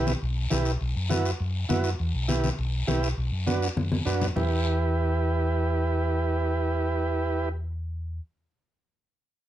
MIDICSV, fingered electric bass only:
0, 0, Header, 1, 2, 480
1, 0, Start_track
1, 0, Key_signature, 1, "minor"
1, 0, Tempo, 296150
1, 1305, Time_signature, 4, 2, 24, 8
1, 15365, End_track
2, 0, Start_track
2, 0, Title_t, "Fingered electric bass"
2, 0, Program_c, 0, 33
2, 0, Note_on_c, 0, 35, 80
2, 210, Note_off_c, 0, 35, 0
2, 363, Note_on_c, 0, 35, 90
2, 740, Note_off_c, 0, 35, 0
2, 836, Note_on_c, 0, 35, 82
2, 1216, Note_off_c, 0, 35, 0
2, 1314, Note_on_c, 0, 35, 88
2, 1503, Note_off_c, 0, 35, 0
2, 1559, Note_on_c, 0, 42, 77
2, 2129, Note_off_c, 0, 42, 0
2, 2275, Note_on_c, 0, 42, 90
2, 2655, Note_off_c, 0, 42, 0
2, 2752, Note_on_c, 0, 42, 82
2, 3133, Note_off_c, 0, 42, 0
2, 3238, Note_on_c, 0, 40, 91
2, 3425, Note_off_c, 0, 40, 0
2, 3469, Note_on_c, 0, 35, 82
2, 4043, Note_off_c, 0, 35, 0
2, 4193, Note_on_c, 0, 35, 86
2, 4574, Note_off_c, 0, 35, 0
2, 4669, Note_on_c, 0, 35, 84
2, 5051, Note_off_c, 0, 35, 0
2, 5148, Note_on_c, 0, 35, 87
2, 5339, Note_off_c, 0, 35, 0
2, 5378, Note_on_c, 0, 42, 74
2, 5957, Note_off_c, 0, 42, 0
2, 6102, Note_on_c, 0, 42, 83
2, 6487, Note_off_c, 0, 42, 0
2, 6582, Note_on_c, 0, 42, 77
2, 6968, Note_off_c, 0, 42, 0
2, 7064, Note_on_c, 0, 40, 77
2, 13273, Note_off_c, 0, 40, 0
2, 15365, End_track
0, 0, End_of_file